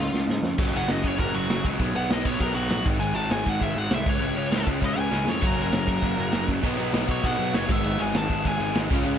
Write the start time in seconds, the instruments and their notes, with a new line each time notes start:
Already playing: overdriven electric guitar C#3 G#3 C#4, lead electric guitar F4 F5
0.13 picked electric bass C#2, snare
0.28 picked electric bass G#2, snare
0.43 picked electric bass F2, snare
0.58 picked electric bass F#1, overdriven electric guitar F#2 C#3 F#3, kick, crash
0.73 picked electric bass F#1, overdriven electric guitar F#2 C#3 F#3, lead electric guitar F#5, crash
0.88 picked electric bass F#1, overdriven electric guitar F#2 C#3 F#3, lead electric guitar D#5, snare, crash
1.03 picked electric bass F#1, overdriven electric guitar F#2 C#3 F#3, lead electric guitar C#5, kick, crash
1.19 picked electric bass F#1, overdriven electric guitar F#2 C#3 F#3, lead electric guitar A#4, kick, crash
1.34 picked electric bass F#1, overdriven electric guitar F#2 C#3 F#3, lead electric guitar F#4, crash
1.49 picked electric bass F#1, overdriven electric guitar F#2 C#3 F#3, snare, crash
1.64 picked electric bass C#2, overdriven electric guitar F#2 C#3 F#3, kick, crash
1.79 picked electric bass B1, overdriven electric guitar B2 F#3 B3, kick, crash
1.95 picked electric bass B1, overdriven electric guitar B2 F#3 B3, lead electric guitar F#5, crash
2.09 picked electric bass B1, overdriven electric guitar B2 F#3 B3, lead electric guitar D#5, snare, crash
2.25 picked electric bass B1, overdriven electric guitar B2 F#3 B3, lead electric guitar C#5, kick, crash
2.40 picked electric bass B1, overdriven electric guitar B2 F#3 B3, lead electric guitar A#4, kick, crash
2.54 picked electric bass B1, overdriven electric guitar B2 F#3 B3, lead electric guitar F#4, crash
2.69 picked electric bass A#1, overdriven electric guitar B2 F#3 B3, snare, crash
2.85 picked electric bass G#1, overdriven electric guitar G#2 D#3 G#3, kick, crash
3.00 picked electric bass G#1, overdriven electric guitar G#2 D#3 G#3, lead electric guitar G#5, crash
3.14 picked electric bass G#1, overdriven electric guitar G#2 D#3 G#3, lead electric guitar A5, crash
3.30 picked electric bass G#1, overdriven electric guitar G#2 D#3 G#3, lead electric guitar G#5, snare, crash
3.45 picked electric bass G#1, overdriven electric guitar G#2 D#3 G#3, lead electric guitar F#5, kick, crash
3.61 picked electric bass G#1, overdriven electric guitar G#2 D#3 G#3, lead electric guitar E5, kick, crash
3.75 picked electric bass G#1, overdriven electric guitar G#2 D#3 G#3, lead electric guitar F#5, crash
3.90 picked electric bass C2, overdriven electric guitar G#2 D#3 G#3, lead electric guitar E5, snare, crash
4.06 picked electric bass C#2, overdriven electric guitar C#3 G#3 C#4, lead electric guitar C#5, kick, crash
4.21 picked electric bass C#2, overdriven electric guitar C#3 G#3 C#4, crash
4.36 picked electric bass C#2, overdriven electric guitar C#3 G#3 C#4, crash
4.51 picked electric bass C#2, overdriven electric guitar C#3 G#3 C#4, snare, crash
4.66 picked electric bass C#2, overdriven electric guitar C#3 G#3 C#4, kick, crash
4.81 picked electric bass C#2, overdriven electric guitar C#3 G#3 C#4, kick, crash
4.85 lead electric guitar D#5
4.96 picked electric bass C#2, overdriven electric guitar C#3 G#3 C#4, lead electric guitar G#5, crash
5.11 picked electric bass C#2, overdriven electric guitar C#3 G#3 C#4, snare
5.26 picked electric bass F2, overdriven electric guitar C#3 G#3 C#4, lead electric guitar C#5, snare
5.42 picked electric bass F#1, overdriven electric guitar F#2 C#3 F#3 A#3 C#4, lead electric guitar A#4, kick, crash
5.57 picked electric bass F#1, overdriven electric guitar F#2 C#3 F#3, crash
5.62 lead electric guitar A#4
5.72 picked electric bass F#1, overdriven electric guitar F#2 C#3 F#3, snare, crash
5.86 picked electric bass F#1, overdriven electric guitar F#2 C#3 F#3, kick, crash
6.02 picked electric bass F#1, overdriven electric guitar F#2 C#3 F#3, kick, crash
6.18 picked electric bass F#1, overdriven electric guitar F#2 C#3 F#3, crash
6.33 picked electric bass F#1, overdriven electric guitar F#2 C#3 F#3, snare, crash
6.48 picked electric bass F#1, overdriven electric guitar F#2 C#3 F#3, kick, crash
6.63 picked electric bass B1, overdriven electric guitar B2 F#3 B3 D#4, kick, crash
6.77 picked electric bass B1, overdriven electric guitar B2 F#3 B3, crash
6.92 picked electric bass B1, overdriven electric guitar B2 F#3 B3, snare, crash
7.07 picked electric bass B1, overdriven electric guitar B2 F#3 B3, lead electric guitar C#5, kick, crash
7.23 picked electric bass B1, overdriven electric guitar B2 F#3 B3, lead electric guitar F#5, kick, crash
7.38 picked electric bass B1, overdriven electric guitar B2 F#3 B3, crash
7.53 picked electric bass F#1, overdriven electric guitar B2 F#3 B3, lead electric guitar C#5, snare, crash
7.67 picked electric bass G#1, overdriven electric guitar G#2 D#3 G#3 B3, lead electric guitar E5, kick, crash
7.72 overdriven electric guitar D#4
7.84 picked electric bass G#1, overdriven electric guitar G#2 D#3 G#3, crash
7.98 picked electric bass G#1, overdriven electric guitar G#2 D#3 G#3, lead electric guitar G#5, crash
8.13 picked electric bass G#1, overdriven electric guitar G#2 D#3 G#3, lead electric guitar A5, snare, crash
8.28 picked electric bass G#1, overdriven electric guitar G#2 D#3 G#3, kick, crash
8.43 picked electric bass G#1, overdriven electric guitar G#2 D#3 G#3, kick, crash
8.48 lead electric guitar G#5
8.59 picked electric bass G#1, overdriven electric guitar G#2 D#3 G#3, crash
8.74 picked electric bass G#1, overdriven electric guitar G#2 D#3 G#3, snare, crash
8.89 picked electric bass C#2, overdriven electric guitar C#3 G#3 C#4, kick, crash
8.94 overdriven electric guitar F4
9.05 picked electric bass C#2, overdriven electric guitar C#3 G#3 C#4, crash